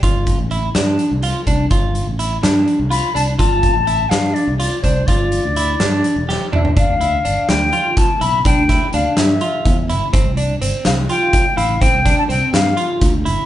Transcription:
<<
  \new Staff \with { instrumentName = "Flute" } { \time 7/8 \key g \mixolydian \tempo 4 = 125 r2. r8 | r2 r8 b''8 a''8 | a''4. f''8 d''8 d''8 c''8 | d''2. e''8 |
f''4. g''4 a''8 b''8 | g''4 f''8 e''4. r8 | r4. f''8 g''4 f''8 | g''8. a''16 g''8 f''4 r4 | }
  \new Staff \with { instrumentName = "Clean electric guitar" } { \time 7/8 \key g \mixolydian f'4 e'8 d'4 f'8 d'8 | f'4 e'8 d'4 f'8 d'8 | f'4 e'8 d'4 f'8 d'8 | f'4 e'8 d'4 g'8 d'8 |
d'8 e'8 d'4 f'4 e'8 | d'8 e'8 d'4 f'4 e'8 | c'8 d'8 c'4 f'4 e'8 | c'8 d'8 c'4 f'4 e'8 | }
  \new Staff \with { instrumentName = "Fingered electric bass" } { \clef bass \time 7/8 \key g \mixolydian g,,8. a,,8. g,8 r16 c,8 r16 c,8 | g,,8. a,,8. g,8 r16 c,8 r16 c,8 | g,,8. a,,8. g,8 r16 c,8 r16 c,8 | g,,8. d,8. g,8 r16 e,,8 r16 e,,8 |
g,,16 d,8. g,,16 r16 d,8 r4 b,,8 | b,,16 d,8 r16 d,16 r16 g,8 r8 e,8 g,,16 r16 | g,,16 c,8. g,,16 r16 c,8 r4 a,,8 | a,,16 c,8 r16 c,16 r16 g,8 r8 d,8 g,,16 r16 | }
  \new DrumStaff \with { instrumentName = "Drums" } \drummode { \time 7/8 <hh bd>8 <hh bd>8 hh8 <hh sn>8 hh8 hh8 <hh bd>8 | <hh bd>8 hh8 hh8 <hh sn>8 hh8 hh8 hh8 | <hh bd>8 <hh bd>8 hh8 <hh sn>8 hh8 hh8 <hh bd>8 | <hh bd>8 hh8 hh8 <hh sn>8 hh8 sn8 toml16 tomfh16 |
<hh bd>8 hh8 hh8 <hh sn>8 hh8 <hh bd>8 hh8 | <hh bd>8 <hh bd sn>8 hh8 <hh sn>8 hh8 <hh bd>8 hh8 | <hh bd>8 hh8 hh8 <hh sn>8 hh8 <hh bd>8 hh8 | <hh bd>8 <hh bd sn>8 hh8 <hh sn>8 hh8 <hh bd>8 hh8 | }
>>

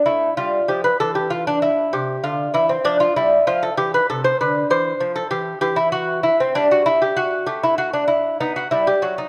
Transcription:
<<
  \new Staff \with { instrumentName = "Lute" } { \time 6/8 \key c \major \tempo 4. = 65 e'8 f'8 g'16 b'16 a'16 g'16 f'16 d'16 e'8 | g'8 f'8 e'16 c'16 d'16 f'16 e'8 f'16 a'16 | g'16 b'16 a'16 c''16 b'8 c''8. a'16 g'8 | \key b \phrygian g'16 e'16 fis'8 e'16 c'16 d'16 fis'16 e'16 g'16 fis'8 |
g'16 e'16 fis'16 d'16 e'8 dis'16 fis'16 e'16 g'16 fis'16 dis'16 | }
  \new Staff \with { instrumentName = "Lute" } { \clef bass \time 6/8 \key c \major a8 g8 f8 e4. | c8 d8 e8 f8 g8 f8 | e8 c8 d8 e8 f8 e8 | \key b \phrygian e4. g4. |
a4. b8 g8 fis8 | }
>>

